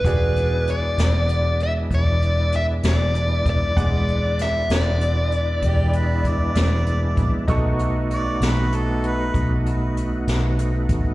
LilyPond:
<<
  \new Staff \with { instrumentName = "Lead electric guitar" } { \time 12/8 \key e \mixolydian \tempo 4. = 65 b'4 d''4. e''8 d''4 e''8 d''4 d''8~ | d''4 e''8 d''2. r4. | r1. | }
  \new Staff \with { instrumentName = "Harmonica" } { \time 12/8 \key e \mixolydian r1. | r2. g'8 b'8 d''2 | r4 d''8 b'8 a'8 b'4 r2 r8 | }
  \new Staff \with { instrumentName = "Upright piano" } { \time 12/8 \key e \mixolydian <fis' gis' d''>1. | <gis d'' fis''>1. | <dis' a' cis'''>1. | }
  \new Staff \with { instrumentName = "Tonewheel organ" } { \time 12/8 \key e \mixolydian <a c' dis' f''>8 <gis b d' e'>1~ <gis b d' e'>4. | <gis b d' e'>1. | <a b dis' fis'>1. | }
  \new Staff \with { instrumentName = "Fingered electric bass" } { \clef bass \time 12/8 \key e \mixolydian e,,4. e,,4. e,,4. e,,4 e,,16 r16 | e,,4. e,,4. e,,4. e,,4 ais,,16 r16 | b,,4. b,,4. b,,4. b,,4 gis,,16 r16 | }
  \new DrumStaff \with { instrumentName = "Drums" } \drummode { \time 12/8 <hh bd>8 hh8 hh8 <hh sn>8 hh8 hh8 <hh bd>8 hh8 hh8 <hh sn>8 hh8 <hh bd>8 | <hh bd>8 hh8 <hh sn>8 <hh sn>8 hh8 hh8 <hh bd>8 hh8 <hh bd>8 <hh sn>8 hh8 <hh bd>8 | <hh bd>8 hh8 hh8 <hh sn>8 hh8 hh8 <hh bd>8 hh8 hh8 <hh sn>8 hh8 <hh bd>8 | }
>>